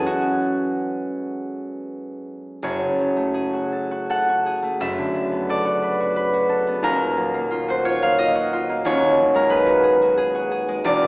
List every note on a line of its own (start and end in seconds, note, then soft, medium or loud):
0.00 2.56 F#2 medium
0.00 2.98 F#3 medium
0.00 3.86 G#3 soft
0.00 3.91 C#4 medium
0.00 0.22 G#4 medium
0.00 0.91 F#5 loud
0.06 3.52 F#4 medium
2.62 4.79 F#1 medium
2.62 4.80 F#2 medium
2.62 4.83 C#5 loud
2.82 4.82 C#3 soft
3.00 5.13 F#3 medium
3.17 4.61 A3 medium
3.34 4.45 G#4 medium
3.53 3.90 F#4 medium
3.72 4.08 A4 soft
3.91 4.28 F#4 medium
4.10 5.48 A4 medium
4.10 8.00 F#5 medium
4.29 5.64 F#4 medium
4.46 4.83 G#4 soft
4.63 6.85 A3 medium
4.80 6.85 F#1 medium
4.80 6.86 F#2 medium
4.80 5.96 E5 loud
4.98 6.86 D3 soft
5.14 7.16 F#3 medium
5.32 6.66 B3 medium
5.49 6.48 A4 medium
5.49 6.86 D5 medium
5.65 5.99 F#4 medium
5.83 6.15 B4 medium
6.00 6.32 F#4 medium
6.16 6.85 B4 medium
6.34 7.67 F#4 medium
6.49 6.85 A4 medium
6.67 6.86 B3 medium
6.82 8.84 D#1 medium
6.82 8.84 D#2 medium
6.82 8.88 A#4 loud
7.00 8.88 A#2 medium
7.17 9.17 F#3 medium
7.34 8.01 A#3 medium
7.51 7.83 F4 medium
7.68 8.34 F#4 medium
7.68 7.97 C5 medium
7.85 8.17 F4 medium
7.85 8.13 C#5 loud
8.02 8.68 A#3 medium
8.02 8.30 F5 medium
8.18 8.52 F4 medium
8.18 10.88 D#5 loud
8.35 9.65 F#4 medium
8.53 8.88 F4 medium
8.69 8.88 A#3 medium
8.85 10.88 D#1 medium
8.85 10.88 D#2 medium
8.85 9.69 C#5 loud
9.02 10.88 D#3 medium
9.18 11.07 F#3 medium
9.34 10.67 G#3 medium
9.34 9.63 A#4 loud
9.50 9.82 G#4 medium
9.50 11.07 B4 loud
9.66 10.00 F#4 medium
9.83 10.16 G#4 medium
10.01 10.33 F#4 medium
10.17 10.50 G#4 medium
10.35 11.07 F#4 medium
10.51 11.07 G#4 medium
10.68 11.07 G#3 medium
10.84 11.07 E1 medium
10.84 11.07 E2 medium
10.84 11.07 D5 loud
11.02 11.07 B2 medium